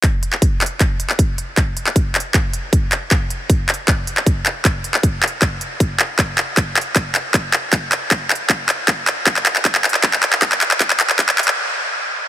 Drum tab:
HH |x---x---x---xx--x---x---x---x---|x---x---x---xx--x---x---x---x---|x---x---x---xx--x---x---x---x---|x---x---x---xx--x---x---x---x---|
CP |x-----x-----x---x-----x---------|x-----x-----x---x-----------x---|x-----------x---x-----x-----x---|x-----x-----x---x-----------x---|
BD |o-------o-------o-------o-------|o-------o-------o-------o-------|o-------o-------o-------o-------|o-------o-------o-------o-------|

HH |x---x---x---xx--x---x---x---x---|x---x---x---xx--x---x---x---x---|x---x---x---xx--x---x---x---x---|x---x---x---xx------------------|
CP |x---x---x---x---x---x---x---x---|x---x---x---x---x---x---x---x---|x-x-x-x-x-x-x-x-x-x-x-x-x-x-x-x-|x-x-x-x-x-x-x-x-----------------|
BD |o-------o-------o-------o-------|o-------o-------o-------o-------|o-------o-------o-------o-------|o-------o-----------------------|